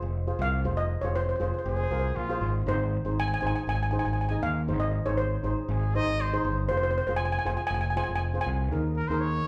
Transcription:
Already playing: F4 G#4 C5 G#5
0.02 F1
0.27 F4 G#4 C5
0.39 C2 F5
0.64 F1 F4 G#4 C5
0.77 D#5
1.01 F1 F4 G#4 C5 C#5
1.16 C5
1.20 C5
1.29 C5
1.36 F4 C5
1.40 F1 G#4 C5
1.54 C5
1.59 C5
1.66 F1 G#4 C5
1.76 C5
1.84 C5
1.91 C2 F4 G#4 A#4 C5
1.99 C5
2.16 A#1 F4
2.29 F4 G#4 C5
2.41 G#1
2.66 G#1 D#4 G#4 C5
3.05 G#1 D#4 G#4 C5
3.20 G#5
3.28 G#5
3.34 G#5
3.41 G#1 D#4 G#4 C5 G#5
3.47 G#5
3.56 G#5
3.67 G#1 G#5
3.75 G#5
3.83 G#5
3.91 D#4 G#4 C5 G#5
3.99 G#5
4.05 G#1 G#5
4.13 G#5
4.21 G#5
4.29 D#4 G#4 D#5 G#5
4.42 D#2 F5
4.68 G#1 D#4 G#4 C5
4.80 D#5
5.06 G#1 D#4 G#4 C5 C#5
5.17 C5
5.43 G#1 D#4 G#4 C5
5.69 G#1 G#4
5.95 D#4 G#4 C5 D#5
6.07 G#1
6.21 C5
6.33 D#4 G#4 C5
6.45 G1
6.69 F1 F4 G#4 C5
6.77 C5
6.83 C5
6.91 C5
6.98 C5
7.07 F1 F4 G#4 C5
7.16 G#5
7.25 G#5
7.32 G#5
7.39 G#5
7.45 F1 F4 G#4 C5 G#5
7.57 G#5
7.67 F1 G#5
7.74 G#5
7.81 G#5
7.90 G#5
7.96 F4 G#4 C5 G#5
8.04 G#5
8.09 F1
8.16 G#5
8.34 F4 G#4 C5
8.41 G#5
8.46 C2
8.71 D#2 D#4 G#4 A#4
8.96 A#4
9.08 D#2 D#4 G#4 A#4 C5
9.20 C#5

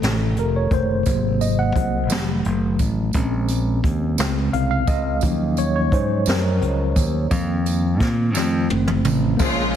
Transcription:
Already playing: C3 D#3 A3
0.02 A1, snare, closed hi-hat
0.36 F1 A#4, closed hi-hat
0.56 C#5
0.71 F#1 C3 D#3 A3 C5, kick, closed hi-hat
1.06 G#1 C3 F#3 A#3, kick, closed hi-hat, tambourine
1.41 D#5, closed hi-hat, tambourine
1.59 F#5
1.76 C2, kick, closed hi-hat
2.10 F1 D#3 F#3 A3, snare, closed hi-hat, tambourine
2.44 F#1, closed hi-hat
2.79 A1, kick, closed hi-hat, tambourine
3.13 A#1 G#3 C4 C#4, kick, closed hi-hat, tambourine
3.49 closed hi-hat, tambourine
3.84 D#2, kick, closed hi-hat
4.18 C#2 C#3 G#3 C4, snare, closed hi-hat, tambourine
4.53 C2 F5, closed hi-hat
4.71 F5
4.87 C#2 D#5, kick, closed hi-hat, tambourine
5.21 D#2 F3 F#3 C#4, kick, closed hi-hat, tambourine
5.57 C#5, closed hi-hat, tambourine
5.76 C#5
5.92 G#2 C5, kick, closed hi-hat
6.26 F#2 A#4, snare, closed hi-hat, tambourine
6.61 C#2, closed hi-hat
6.96 D#2, kick, closed hi-hat, tambourine
7.30 F2 D#3 A#3 C4, kick, closed hi-hat, tambourine
7.66 closed hi-hat, tambourine
8.00 A#2, kick, snare, closed hi-hat
8.35 F2 D#3 A3 C4, snare, tambourine
8.70 F#1, high tom
8.88 mid tom
9.05 A1, mid tom, tambourine
9.37 A#1 A#2 A#3 C#4 G#4 C5 F5, kick, crash, tambourine
9.43 G#3 C#4 F4
9.48 C#5

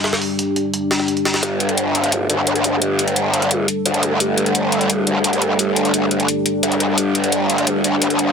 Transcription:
Already playing: G3 D4 G4
0.04 snare, closed hi-hat
0.13 snare, closed hi-hat
0.22 open hi-hat
0.39 closed hi-hat
0.56 closed hi-hat
0.74 closed hi-hat
0.91 snare, closed hi-hat
1.00 snare
1.08 closed hi-hat
1.17 closed hi-hat
1.25 snare, closed hi-hat
1.34 snare, closed hi-hat
1.43 G1 G3 D4 A4, closed hi-hat
1.60 closed hi-hat
1.69 closed hi-hat
1.77 closed hi-hat
1.95 closed hi-hat
2.04 closed hi-hat
2.12 closed hi-hat
2.29 D2, closed hi-hat
2.47 closed hi-hat
2.56 closed hi-hat
2.64 closed hi-hat
2.81 G1, closed hi-hat
2.99 closed hi-hat
3.08 closed hi-hat
3.16 closed hi-hat
3.34 closed hi-hat
3.42 closed hi-hat
3.51 closed hi-hat
3.68 closed hi-hat
3.86 D2, closed hi-hat
3.94 closed hi-hat
4.03 closed hi-hat
4.20 G1, closed hi-hat
4.38 closed hi-hat
4.46 closed hi-hat
4.55 closed hi-hat
4.72 closed hi-hat
4.81 closed hi-hat
4.90 closed hi-hat
5.07 D2, closed hi-hat
5.24 closed hi-hat
5.33 closed hi-hat
5.42 closed hi-hat
5.59 G1, closed hi-hat
5.76 closed hi-hat
5.85 closed hi-hat
5.94 A#1, closed hi-hat
6.11 G1, closed hi-hat
6.20 closed hi-hat
6.28 closed hi-hat
6.46 closed hi-hat
6.63 D2, closed hi-hat
6.72 closed hi-hat
6.80 closed hi-hat
6.98 G1 A#4, closed hi-hat
7.15 closed hi-hat
7.24 closed hi-hat
7.32 closed hi-hat
7.50 closed hi-hat
7.58 F#1, closed hi-hat
7.67 closed hi-hat
7.84 D2, closed hi-hat
8.02 closed hi-hat
8.10 closed hi-hat
8.19 closed hi-hat

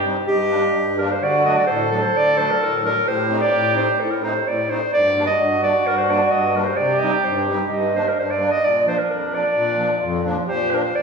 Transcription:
Already playing: G2 G4
0.04 G3 C4 D#4
0.28 G2 D#4 G4
0.50 G3 A#3 D4
0.75 G2 D4
0.98 G3 A#3 D4 A#4
1.12 C5
1.21 D3 F#4 D5
1.45 F#3 A3 D4 D#5
1.57 D5
1.67 A2 A4 C5
1.91 F#3 A3 D4 A4
2.02 C5
2.14 D3 D5
2.37 F#3 A3 D4 C5
2.51 A#4
2.61 A2 A#4
2.82 F#3 A3 D4 A#4
3.06 A2 G4 C5
3.29 A3 C4 D#4
3.41 D5
3.53 A2
3.75 A3 C4 D#4 C5
3.99 A2 A4
4.10 A#4
4.22 A3 C4 D#4 C5
4.47 A2 D5
4.69 A3 C4 D#4 C5
4.91 G2 F#4 D5
5.17 G3 A#3 D4
5.27 D#5
5.39 G2
5.62 G3 A#3 D4 D5
5.85 G2 A#4
5.97 C5
6.09 G3 A#3 D4 D5
6.31 G2 D#5
6.55 G3 A#3 D4 A#4
6.64 C5
6.76 C3 G4 D5
6.99 G3 C4 D#4 D#5
7.12 D5
7.25 G2 C5
7.47 G3 C4 D#4 G4
7.68 D#4
7.72 G2
7.95 G3 A#3 D4 C5
8.08 A#4
8.14 G2 D4
8.19 C5
8.30 D5
8.38 G3 A#3 D4
8.51 D#5
8.61 A#2 D4 D5
8.86 F3 A#3 D4 C5
8.98 A#4
9.10 F2 A#4
9.33 F3 A#3 D4 D5
9.55 A#2
9.77 F3 A#3 D4
10.00 F2 F4
10.23 F3 A#3 D4 F4
10.46 A#2 G4 C5
10.70 F3 A#3 D4 A#4
10.82 C5
10.93 F2 F4 D5

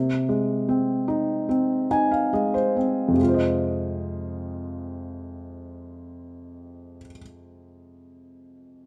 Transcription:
Already playing: C3
0.29 G#3
0.69 C4
1.08 D#4
1.49 C4
1.91 D#4 G#5
2.11 F5
2.33 G#3 D#5
2.54 C5
2.76 C4
3.08 F2
3.13 C3
3.18 G#3
3.23 F4
3.28 C5
3.34 D#5

